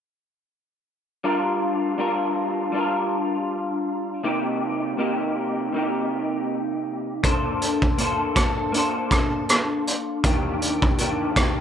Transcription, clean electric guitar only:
1.24 1.98 G3 medium
1.24 1.98 D4 medium
1.24 1.98 F4 medium
1.24 2.00 A#4 medium
1.98 2.72 G3 medium
1.98 2.73 D4 medium
1.98 2.74 F4 medium
1.98 2.77 A#4 medium
2.72 4.24 G3 soft
2.72 4.24 D4 medium
2.72 4.25 F4 medium
2.78 4.27 A#4 medium
4.24 4.96 C3 medium
4.24 4.98 A#3 medium
4.24 4.98 D#4 medium
4.24 4.99 G4 medium
4.97 5.71 C3 medium
4.97 5.74 A#3 medium
4.97 5.74 D#4 medium
4.97 5.74 G4 medium
5.72 7.23 C3 medium
5.72 7.23 A#3 soft
5.72 7.23 D#4 medium
5.78 7.24 G4 medium
7.23 7.97 A#3 medium
7.23 7.99 D4 medium
7.23 7.98 A4 medium
7.23 7.99 C5 medium
7.98 8.72 A#3 medium
7.98 8.74 D4 medium
7.98 8.74 A4 medium
7.98 8.75 C5 medium
8.72 10.24 A#3 medium
8.72 10.25 D4 medium
8.76 10.25 A4 medium
8.76 10.26 C5 medium
10.24 10.98 D#3 medium
10.24 11.00 A#3 medium
10.24 11.01 D4 medium
10.24 11.01 G4 medium
10.99 11.61 D#3 medium
10.99 11.61 A#3 medium
10.99 11.61 D4 medium
10.99 11.61 G4 medium

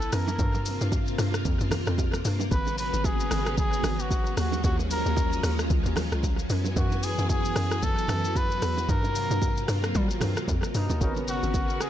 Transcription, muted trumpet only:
0.13 0.89 A#4 loud
2.52 2.77 B4 loud
2.79 3.07 B4 loud
3.05 3.58 G#4 loud
3.58 4.02 G#4 loud
4.00 4.38 F#4 medium
4.38 4.62 F#4 medium
4.65 4.76 F#4 medium
4.91 5.66 A#4 loud
6.77 7.05 F#4 medium
7.04 7.30 G#4 medium
7.30 7.85 G#4 loud
7.83 8.38 A4 loud
8.37 8.91 B4 loud
8.90 9.95 A#4 loud
10.76 11.00 D#4 medium
11.02 11.14 D#4 medium
11.28 11.83 F#4 loud
11.81 11.90 G#4 loud

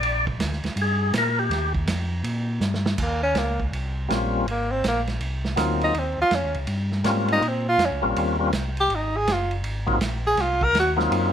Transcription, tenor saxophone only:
3.02 3.23 A#3 medium
3.23 3.39 C#4 loud
3.38 3.61 A#3 medium
4.51 4.73 A#3 medium
4.72 4.84 C4 loud
4.88 5.01 A#3 medium
5.84 6.00 D#4 loud
5.99 6.20 C4 medium
6.21 6.36 F4 loud
6.35 6.57 C#4 medium
7.33 7.49 D#4 loud
7.48 7.68 C4 medium
7.69 7.87 F4 loud
7.85 8.06 C#4 medium
8.80 8.97 G4 loud
8.96 9.18 D#4 medium
9.17 9.35 G#4 loud
9.33 9.54 F4 medium
10.27 10.43 G#4 loud
10.42 10.65 F4 medium
10.64 10.76 A#4 loud
10.80 10.92 F#4 medium

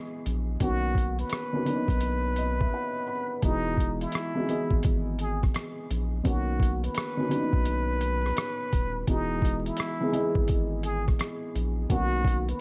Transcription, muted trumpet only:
0.62 1.16 F#4 loud
1.20 3.39 B4 medium
3.44 3.98 D#4 loud
4.02 4.80 E4 medium
5.21 5.41 G#4 medium
6.26 6.81 F#4 medium
6.85 9.04 B4 medium
9.09 9.63 D#4 loud
9.67 10.45 E4 medium
10.85 11.05 G#4 medium
11.91 12.46 F#4 loud
12.50 12.61 B4 medium

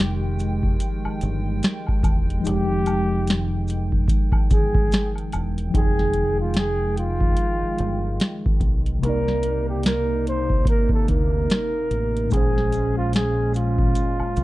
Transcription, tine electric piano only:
0.00 2.39 F3 medium
0.00 2.45 G#3 medium
0.00 2.41 D#4 soft
0.00 2.43 G4 medium
2.41 5.68 F3 medium
2.41 5.69 D#4 soft
2.47 5.73 G#3 medium
2.47 5.71 G5 medium
5.70 8.97 F3 medium
5.70 8.99 D#4 soft
5.77 9.02 G#4 medium
5.77 9.00 G5 soft
8.99 12.26 C3 medium
8.99 12.27 A#3 soft
9.06 12.29 D#4 soft
9.06 12.31 D5 medium
12.27 14.44 A#2 medium
12.27 14.44 G#3 medium
12.34 14.44 C#4 soft
12.34 14.44 C5 medium

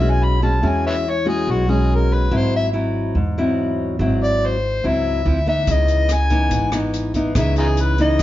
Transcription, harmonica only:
0.00 0.12 E5 medium
0.11 0.26 G#5 medium
0.24 0.42 B5 medium
0.43 0.69 A5 medium
0.68 0.86 G#5 medium
0.87 0.95 B4 medium
0.87 0.94 C#5 medium
0.87 1.11 E5 medium
1.10 1.28 C#5 medium
1.28 1.52 G#4 medium
1.51 1.72 F#4 medium
1.70 1.96 G#4 medium
1.95 2.15 A#4 medium
2.14 2.39 B4 medium
2.37 2.55 C5 medium
2.56 2.68 E5 medium
4.23 4.48 D5 medium
4.46 4.89 C5 medium
4.87 5.48 E5 medium
5.49 5.74 E5 medium
5.72 6.15 D#5 medium
6.13 6.74 G#5 medium
7.39 7.57 E5 medium
7.58 7.67 D#4 soft
7.58 7.66 F4 soft
7.58 7.82 G#4 medium
7.81 8.00 B4 medium
8.01 8.23 D#5 medium

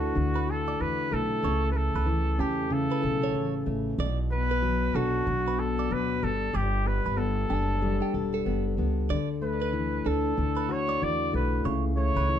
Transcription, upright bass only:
0.00 0.14 D2 medium
0.16 0.76 D2 medium
0.81 1.10 E2 medium
1.12 1.42 B1 medium
1.44 1.91 C#2 medium
1.94 2.36 C#2 medium
2.39 2.87 E2 medium
3.04 3.35 B1 medium
3.35 3.65 A1 medium
3.66 3.96 A1 medium
3.98 4.91 B1 loud
4.95 5.24 B1 medium
5.27 5.87 B1 medium
5.91 6.20 D2 medium
6.23 6.52 G1 medium
6.55 7.02 G1 medium
7.06 7.47 G1 medium
7.50 7.98 F#1 medium
8.14 8.44 E1 medium
8.46 8.76 F#1 medium
8.78 9.08 C#2 medium
9.10 10.02 D2 medium
10.06 10.35 D2 medium
10.38 10.98 D2 medium
11.02 11.31 E2 medium
11.34 11.63 B1 medium
11.65 12.12 C#2 medium
12.16 12.39 C#2 medium

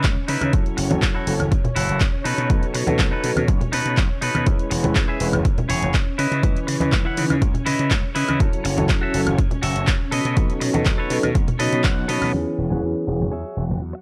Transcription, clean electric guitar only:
0.28 0.53 D#4 medium
0.28 0.53 E4 medium
0.28 0.54 B4 medium
0.77 muted clean electric guitar stroke loud
0.90 muted clean electric guitar stroke soft
1.02 muted clean electric guitar stroke soft
1.14 1.33 E4 medium
1.14 1.33 F#4 medium
1.14 1.34 A4 medium
1.51 muted clean electric guitar stroke soft
1.76 2.00 E4 loud
1.76 2.01 F#4 loud
1.76 2.01 A4 loud
2.24 2.65 D#4 medium
2.24 2.65 A4 medium
2.24 2.65 B4 loud
2.74 muted clean electric guitar stroke loud
2.87 muted clean electric guitar stroke soft
2.98 muted clean electric guitar stroke soft
3.11 3.30 D#4 medium
3.11 3.30 A4 medium
3.11 3.31 B4 loud
3.48 muted clean electric guitar stroke soft
3.72 3.97 D#4 loud
3.72 3.98 A4 loud
3.72 3.98 B4 loud
4.21 4.46 D#4 medium
4.21 4.47 A4 medium
4.21 4.47 B4 medium
4.71 muted clean electric guitar stroke loud
4.84 muted clean electric guitar stroke soft
4.95 muted clean electric guitar stroke soft
5.08 5.27 E4 medium
5.08 5.27 G#4 medium
5.08 5.27 E5 medium
5.44 muted clean electric guitar stroke soft
5.69 5.94 E4 loud
5.69 5.94 G#4 loud
5.69 5.95 C#5 loud
6.18 6.58 E4 medium
6.18 6.59 B4 medium
6.18 6.59 D#5 medium
6.67 muted clean electric guitar stroke loud
6.80 muted clean electric guitar stroke soft
6.92 muted clean electric guitar stroke soft
7.05 7.23 E4 medium
7.05 7.24 B4 medium
7.05 7.24 F#5 medium
7.41 muted clean electric guitar stroke soft
7.66 7.91 E4 loud
7.66 7.91 B4 loud
7.66 7.91 D#5 loud
8.15 8.40 E4 medium
8.15 8.40 B4 medium
8.15 8.41 D#5 medium
8.64 muted clean electric guitar stroke loud
8.77 muted clean electric guitar stroke soft
8.89 muted clean electric guitar stroke soft
9.01 9.20 F#4 medium
9.01 9.20 A4 medium
9.01 9.21 E5 loud
9.38 muted clean electric guitar stroke soft
9.62 9.87 F#4 loud
9.62 9.88 A4 loud
9.62 9.88 E5 loud
10.11 10.52 A4 medium
10.11 10.52 B4 medium
10.11 10.52 D#5 loud
10.60 muted clean electric guitar stroke loud
10.73 muted clean electric guitar stroke soft
10.85 muted clean electric guitar stroke soft
10.98 11.17 A4 medium
10.98 11.17 B4 medium
10.98 11.17 C#5 medium
11.35 muted clean electric guitar stroke soft
11.59 11.84 A4 loud
11.59 11.84 B4 loud
11.59 11.84 D#5 loud
11.84 12.07 F#5 medium
12.08 12.33 A4 medium
12.08 12.32 B4 medium
12.08 12.32 C#5 medium
12.08 12.34 D#5 loud
12.33 muted clean electric guitar stroke medium
12.46 muted clean electric guitar stroke soft
12.70 12.82 G#4 medium
12.70 12.83 C#5 medium
12.70 12.83 F#5 medium
12.95 muted clean electric guitar stroke soft
13.31 13.63 G#4 medium
13.31 13.63 C#5 medium
13.31 13.64 E5 medium
13.93 muted clean electric guitar stroke medium

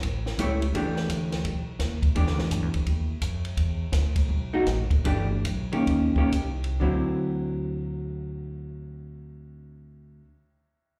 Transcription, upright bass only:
0.03 0.37 A1 medium
0.38 0.73 C#2 medium
0.74 1.08 E2 medium
1.09 1.43 D2 medium
1.44 1.79 B1 medium
1.80 2.14 D#2 medium
2.15 2.27 E2 medium
2.27 2.38 D2 soft
2.39 2.50 B1 medium
2.51 2.62 F#2 medium
2.62 2.74 E2 soft
2.75 2.85 D2 medium
2.86 3.20 D#2 medium
3.22 3.56 F2 medium
3.57 3.91 E2 medium
3.92 4.27 D2 medium
4.29 4.65 B1 medium
4.66 4.80 A1 medium
4.79 4.91 F#1 medium
4.91 5.03 D#1 medium
5.04 5.43 G1 medium
5.45 5.86 B1 medium
5.87 6.31 D#2 medium
6.33 6.80 C2 medium
6.81 10.20 D2 medium

